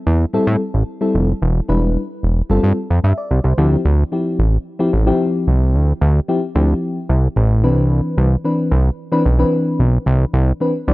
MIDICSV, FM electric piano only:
0, 0, Header, 1, 2, 480
1, 0, Start_track
1, 0, Tempo, 540541
1, 1260, Time_signature, 4, 2, 24, 8
1, 9714, End_track
2, 0, Start_track
2, 0, Title_t, "FM electric piano"
2, 0, Program_c, 0, 5
2, 296, Note_on_c, 0, 55, 96
2, 299, Note_on_c, 0, 60, 89
2, 300, Note_on_c, 0, 64, 86
2, 303, Note_on_c, 0, 69, 108
2, 539, Note_off_c, 0, 55, 0
2, 541, Note_off_c, 0, 60, 0
2, 541, Note_off_c, 0, 64, 0
2, 543, Note_off_c, 0, 69, 0
2, 895, Note_on_c, 0, 55, 88
2, 898, Note_on_c, 0, 60, 74
2, 900, Note_on_c, 0, 64, 73
2, 902, Note_on_c, 0, 69, 84
2, 1139, Note_off_c, 0, 55, 0
2, 1140, Note_off_c, 0, 60, 0
2, 1141, Note_off_c, 0, 64, 0
2, 1142, Note_off_c, 0, 69, 0
2, 1496, Note_on_c, 0, 55, 75
2, 1498, Note_on_c, 0, 62, 75
2, 1500, Note_on_c, 0, 64, 73
2, 1501, Note_on_c, 0, 71, 92
2, 1787, Note_off_c, 0, 55, 0
2, 1788, Note_off_c, 0, 62, 0
2, 1789, Note_off_c, 0, 64, 0
2, 1790, Note_off_c, 0, 71, 0
2, 2219, Note_on_c, 0, 55, 94
2, 2221, Note_on_c, 0, 60, 84
2, 2223, Note_on_c, 0, 65, 85
2, 2226, Note_on_c, 0, 69, 104
2, 2461, Note_off_c, 0, 55, 0
2, 2461, Note_off_c, 0, 60, 0
2, 2463, Note_off_c, 0, 65, 0
2, 2464, Note_off_c, 0, 69, 0
2, 2702, Note_on_c, 0, 76, 66
2, 2815, Note_off_c, 0, 76, 0
2, 2821, Note_on_c, 0, 74, 73
2, 3048, Note_off_c, 0, 74, 0
2, 3062, Note_on_c, 0, 72, 63
2, 3179, Note_on_c, 0, 53, 93
2, 3182, Note_on_c, 0, 60, 84
2, 3185, Note_on_c, 0, 64, 82
2, 3186, Note_on_c, 0, 67, 95
2, 3289, Note_off_c, 0, 72, 0
2, 3373, Note_off_c, 0, 53, 0
2, 3374, Note_off_c, 0, 60, 0
2, 3375, Note_off_c, 0, 64, 0
2, 3376, Note_off_c, 0, 67, 0
2, 3657, Note_on_c, 0, 53, 74
2, 3659, Note_on_c, 0, 60, 66
2, 3662, Note_on_c, 0, 64, 73
2, 3665, Note_on_c, 0, 67, 80
2, 3900, Note_off_c, 0, 53, 0
2, 3901, Note_off_c, 0, 60, 0
2, 3902, Note_off_c, 0, 64, 0
2, 3903, Note_off_c, 0, 67, 0
2, 4255, Note_on_c, 0, 53, 91
2, 4256, Note_on_c, 0, 60, 91
2, 4260, Note_on_c, 0, 64, 88
2, 4263, Note_on_c, 0, 67, 104
2, 4354, Note_off_c, 0, 53, 0
2, 4354, Note_off_c, 0, 60, 0
2, 4357, Note_off_c, 0, 64, 0
2, 4358, Note_off_c, 0, 67, 0
2, 4495, Note_on_c, 0, 53, 100
2, 4499, Note_on_c, 0, 60, 99
2, 4502, Note_on_c, 0, 64, 91
2, 4504, Note_on_c, 0, 67, 114
2, 4883, Note_off_c, 0, 53, 0
2, 4886, Note_off_c, 0, 60, 0
2, 4887, Note_off_c, 0, 64, 0
2, 4888, Note_off_c, 0, 67, 0
2, 5579, Note_on_c, 0, 53, 83
2, 5580, Note_on_c, 0, 60, 73
2, 5584, Note_on_c, 0, 64, 77
2, 5586, Note_on_c, 0, 67, 93
2, 5676, Note_off_c, 0, 53, 0
2, 5677, Note_off_c, 0, 60, 0
2, 5678, Note_off_c, 0, 64, 0
2, 5679, Note_off_c, 0, 67, 0
2, 5816, Note_on_c, 0, 53, 83
2, 5819, Note_on_c, 0, 60, 77
2, 5821, Note_on_c, 0, 64, 71
2, 5824, Note_on_c, 0, 67, 83
2, 6204, Note_off_c, 0, 53, 0
2, 6205, Note_off_c, 0, 60, 0
2, 6206, Note_off_c, 0, 64, 0
2, 6208, Note_off_c, 0, 67, 0
2, 6778, Note_on_c, 0, 52, 92
2, 6781, Note_on_c, 0, 60, 81
2, 6783, Note_on_c, 0, 62, 82
2, 6785, Note_on_c, 0, 71, 94
2, 7355, Note_off_c, 0, 52, 0
2, 7356, Note_off_c, 0, 60, 0
2, 7357, Note_off_c, 0, 62, 0
2, 7359, Note_off_c, 0, 71, 0
2, 7499, Note_on_c, 0, 52, 77
2, 7500, Note_on_c, 0, 60, 72
2, 7503, Note_on_c, 0, 62, 73
2, 7505, Note_on_c, 0, 71, 89
2, 7740, Note_off_c, 0, 52, 0
2, 7741, Note_off_c, 0, 60, 0
2, 7743, Note_off_c, 0, 62, 0
2, 7744, Note_off_c, 0, 71, 0
2, 8096, Note_on_c, 0, 52, 97
2, 8098, Note_on_c, 0, 60, 94
2, 8101, Note_on_c, 0, 62, 90
2, 8103, Note_on_c, 0, 71, 114
2, 8194, Note_off_c, 0, 52, 0
2, 8195, Note_off_c, 0, 60, 0
2, 8197, Note_off_c, 0, 62, 0
2, 8198, Note_off_c, 0, 71, 0
2, 8334, Note_on_c, 0, 52, 100
2, 8338, Note_on_c, 0, 60, 92
2, 8339, Note_on_c, 0, 62, 87
2, 8343, Note_on_c, 0, 71, 111
2, 8723, Note_off_c, 0, 52, 0
2, 8725, Note_off_c, 0, 60, 0
2, 8725, Note_off_c, 0, 62, 0
2, 8727, Note_off_c, 0, 71, 0
2, 9416, Note_on_c, 0, 52, 73
2, 9421, Note_on_c, 0, 60, 76
2, 9422, Note_on_c, 0, 62, 74
2, 9425, Note_on_c, 0, 71, 88
2, 9515, Note_off_c, 0, 52, 0
2, 9517, Note_off_c, 0, 60, 0
2, 9517, Note_off_c, 0, 62, 0
2, 9519, Note_off_c, 0, 71, 0
2, 9657, Note_on_c, 0, 52, 80
2, 9661, Note_on_c, 0, 60, 70
2, 9662, Note_on_c, 0, 62, 69
2, 9666, Note_on_c, 0, 74, 85
2, 9714, Note_off_c, 0, 52, 0
2, 9714, Note_off_c, 0, 60, 0
2, 9714, Note_off_c, 0, 62, 0
2, 9714, Note_off_c, 0, 74, 0
2, 9714, End_track
0, 0, End_of_file